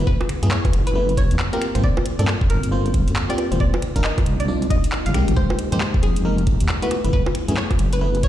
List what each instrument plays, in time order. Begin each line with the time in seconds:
Already playing: analog synth pad A3 B3 E4 G#4
0.07 wobble bass F#1, synth pluck B4, kick
0.21 high bongo
0.29 finger snap, closed hi-hat
0.42 wobble bass F#2, fm electric piano A3 B3 E4 G#4, closed hi-hat
0.51 fm electric piano A3 B3 E4 G#4, synth pluck C#5, clap
0.65 kick, closed hi-hat, high bongo
0.73 wobble bass F#1, closed hi-hat
0.87 synth pluck B4, closed hi-hat
0.95 fm electric piano A3 B3 E4 B4
1.09 closed hi-hat
1.17 synth pluck C#5, kick, closed hi-hat
1.31 wobble bass F#2, closed hi-hat
1.39 clap
1.53 fm electric piano A#3 C4 F4 G4, synth pluck A#4, closed hi-hat
1.62 analog synth pad A#3 C4 F4 A4, finger snap, closed hi-hat
1.75 wobble bass G1, fm electric piano A#3 C4 F4 C5, finger snap, closed hi-hat
1.84 wobble bass G1, synth pluck D5, kick
1.97 high bongo
2.06 closed hi-hat
2.19 wobble bass G2, fm electric piano A#3 C4 F4 A4, synth pluck D5, closed hi-hat
2.27 fm electric piano A#3 C4 F4 A4, clap
2.41 kick
2.50 wobble bass G1, synth pluck A#4, closed hi-hat
2.63 closed hi-hat
2.72 fm electric piano A#3 C4 F4 C5
2.86 closed hi-hat
2.94 kick, closed hi-hat
3.07 wobble bass G2, closed hi-hat
3.16 clap
3.29 fm electric piano A#3 C4 F4 G4, synth pluck D5, closed hi-hat
3.38 closed hi-hat, high bongo
3.51 wobble bass F1, fm electric piano A#3 C4 F4 C5, closed hi-hat
3.60 wobble bass C2, analog synth pad D4 D#4, synth pluck D5, kick
3.74 high bongo
3.82 finger snap, closed hi-hat
3.96 wobble bass G1, fm electric piano D4 D#4 F4 A#4, kick, closed hi-hat
4.04 fm electric piano D4 D#4 F4 A#4, synth pluck D#5, clap
4.18 kick, closed hi-hat, high bongo
4.26 wobble bass C2, closed hi-hat
4.40 synth pluck D5, closed hi-hat
4.48 fm electric piano D4 D#4 F4 D5
4.62 closed hi-hat
4.70 synth pluck D#5, kick, closed hi-hat
4.84 closed hi-hat
4.92 clap
5.06 wobble bass G1, synth pluck F5, closed hi-hat
5.14 wobble bass C2, fm electric piano G#3 A#3 D#4 G4, finger snap, closed hi-hat
5.28 wobble bass G1, finger snap, closed hi-hat
5.36 wobble bass F1, analog synth pad G#3 G4, synth pluck C5, kick
5.50 high bongo
5.59 closed hi-hat
5.72 wobble bass F2, fm electric piano G#3 A#3 D#4 G4, synth pluck C5, closed hi-hat
5.81 fm electric piano G#3 A#3 D#4 G4, clap
5.94 kick
6.03 wobble bass F1, synth pluck G#4, closed hi-hat
6.16 closed hi-hat
6.25 fm electric piano G#3 A#3 D#4 A#4
6.38 closed hi-hat
6.47 kick, closed hi-hat
6.60 wobble bass F2, closed hi-hat
6.69 clap
6.82 fm electric piano A3 B3 E4 F#4, synth pluck B4, closed hi-hat
6.91 analog synth pad A3 B3 E4 G#4, closed hi-hat, high bongo
7.04 wobble bass F#1, fm electric piano A3 B3 E4 B4, closed hi-hat
7.13 wobble bass F#1, synth pluck B4, kick
7.26 high bongo
7.35 finger snap, closed hi-hat
7.48 wobble bass F#2, fm electric piano A3 B3 E4 G#4, closed hi-hat
7.57 fm electric piano A3 B3 E4 G#4, synth pluck C#5, clap
7.71 kick, closed hi-hat, high bongo
7.79 wobble bass F#1, closed hi-hat
7.93 synth pluck B4, closed hi-hat
8.01 fm electric piano A3 B3 E4 B4
8.15 closed hi-hat
8.23 synth pluck C#5, kick, closed hi-hat